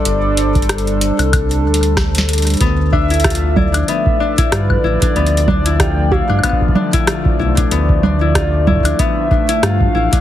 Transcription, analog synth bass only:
X:1
M:4/4
L:1/16
Q:"Swing 16ths" 1/4=94
K:Ddor
V:1 name="Analog synth bass" clef=bass
G,,,6- G,,, C,,3 D,,6 | D,,8 z4 G,,2 A,,, z | D,,6- D,, G,, z6 B,,,2 | D,,8 z4 G,,2 A,,, z |]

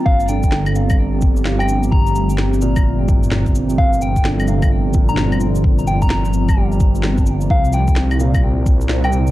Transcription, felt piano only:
X:1
M:4/4
L:1/16
Q:"Swing 16ths" 1/4=129
K:Gm
V:1 name="Felt piano" clef=bass
z2 D,4- D, z8 z | z6 B,,4 C,4- C, z | z4 D,2 C,4 B,, D,4- D, | z8 G,4- G, z3 |
C,4- C, z B,,4- B,, z4 z |]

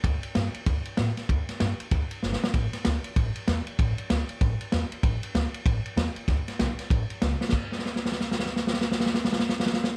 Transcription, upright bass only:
X:1
M:4/4
L:1/8
Q:"Swing" 1/4=193
K:Ador
V:1 name="Upright bass" clef=bass
D,, z G,, z D,, z A,, z | D,, z G,, z D,, z G,,, z | A,,, z D,, z A,,, z E,, z | A,,, z D,, z A,,, z E,, z |
A,,, z D,, z A,,, z E,, z | D,, z B,,, z A,,, z ^C,, z | D,,8- | D,,8 |]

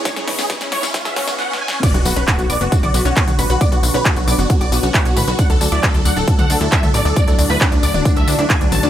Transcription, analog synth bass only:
X:1
M:4/4
L:1/16
Q:1/4=135
K:Bdor
V:1 name="Analog synth bass" clef=bass
z C,, C,, C,, z C,, C,, G,,, z C,, C,, C,, z4 | z B,,, B,,, B,,, z B,,, B,,, F,,, z B,,, B,,, B,,, z B,,, A,,, B,,, | z B,,, B,,, B,,, z B,,, B,,, F,,, z B,,, B,,, B,,, z B,,, A,,, B,,, | z D,, D,, D,, z D,, D,, D,,, z D,, D,, D,, z D,, A,,, D,, |
z D,, D,, D,, z D,, D,, D,,, z D,, D,, D,, z D,, A,,, D,, |]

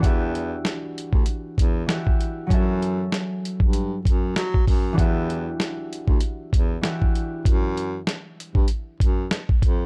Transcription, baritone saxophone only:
X:1
M:4/4
L:1/16
Q:"Swing 16ths" 1/4=97
K:Edor
V:1 name="Baritone saxophone" clef=bass
E,,4 z3 D,, z2 E,,2 z4 | F,,4 z3 G,,3 F,,2 F,2 F,,2 | E,,4 z3 D,, z2 E,,2 z4 | F,,4 z3 G,, z2 F,,2 z2 =F,,2 |]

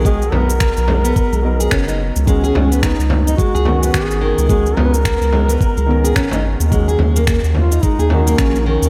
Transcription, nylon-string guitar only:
X:1
M:4/4
L:1/16
Q:"Swing 16ths" 1/4=108
K:C#dor
V:1 name="Nylon-string guitar"
G, z B, z3 G, B,2 G, z G C D z2 | G, G G, B, B, z2 D G, G D, B,3 D,2 | G, z B, z3 G, B,2 G, z G C D z2 | G, G G, A, A, z2 D G, G D, A,3 D,2 |]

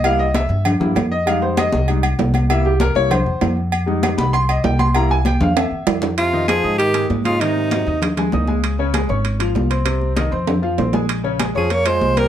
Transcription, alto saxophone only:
X:1
M:4/4
L:1/8
Q:1/4=195
K:Fm
V:1 name="Alto saxophone"
z8 | z8 | z8 | z8 |
z8 | F2 A2 G2 z F | E4 z4 | z8 |
z8 | z3 A d c2 B |]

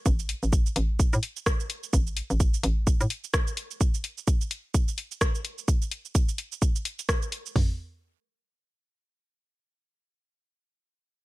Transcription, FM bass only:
X:1
M:4/4
L:1/16
Q:"Swing 16ths" 1/4=128
K:Clyd
V:1 name="FM bass" clef=bass
A,,,2 z A,,,2 z A,,,2 z A,, z6 | A,,,2 z A,,,2 z A,,,2 z A,, z6 | z16 | z16 |
z16 | z16 |]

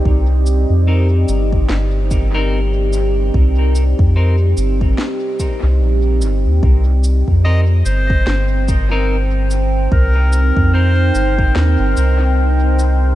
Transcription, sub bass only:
X:1
M:4/4
L:1/16
Q:"Swing 16ths" 1/4=73
K:Cm
V:1 name="Sub bass" clef=bass
C,,3 F,,3 G,,,2 G,,,8 | C,,3 F,,3 G,,,2 z3 C,, B,,,2 G,,, E,, | C,,3 F,,3 G,,,2 G,,,8 | C,,3 F,,3 G,,,2 E,, G,,, C,,6 |]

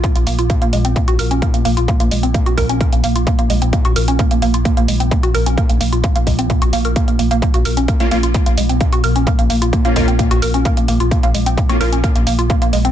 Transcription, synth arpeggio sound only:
X:1
M:4/4
L:1/16
Q:1/4=130
K:Bbm
V:1 name="Synth arpeggio sound"
B, B, B, F B, B, A, C B, G B D B, B, B, F | B, B, A, C B, G B D B, B, B, F B, B, A, C | B, G B D B, B, B, F B, B, A, C B, G B D | B, B, B, F B, B, A, C B, G B, B B, B, B, B, |
B, G B D B, B, B, F B, B, A, C B, G B D | B, B, B, F B, B, A, C B, G B D B, B, B, F | B, B, A, C B, G B D B, B, B, F B, B, A, C |]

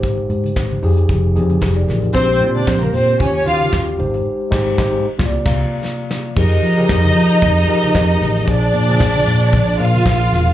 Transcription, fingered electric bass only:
X:1
M:4/4
L:1/16
Q:"Swing 16ths" 1/4=114
K:Fdor
V:1 name="Fingered electric bass" clef=bass
A,,,2 A,,2 A,,,2 F,,2 F,,,2 F,,2 F,,,2 =A,,,2 | B,,,2 B,,2 B,,,2 B,,2 E,,2 E,2 E,,2 A,,,2 | z2 A,,,2 A,,,2 z C,,2 C,,2 z4 z | F,,2 F,2 F,,2 F,2 F,,2 F,2 F,,2 =A,,,2 |
B,,,2 B,,2 B,,,2 B,,2 B,,,2 B,,2 B,,,2 =E,,,2 |]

